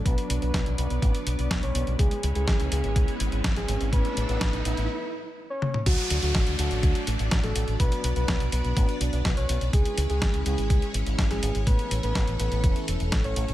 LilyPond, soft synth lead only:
\new Staff \with { instrumentName = "Soft synth lead" } { \time 4/4 \key a \major \tempo 4 = 124 b'8 r16 b'8 r16 b'8. r4 cis''8 r16 | gis'8 r16 gis'8 r16 gis'8. r4 gis'8 r16 | b'8 r16 b'8 r16 b'8. r4 cis''8 r16 | fis'8 r16 fis'8 r16 fis'8. r4 a'8 r16 |
b'8 r16 b'8 r16 b'8. r4 cis''8 r16 | gis'8 r16 gis'8 r16 gis'8. r4 gis'8 r16 | b'8 r16 b'8 r16 b'8. r4 cis''8 r16 | }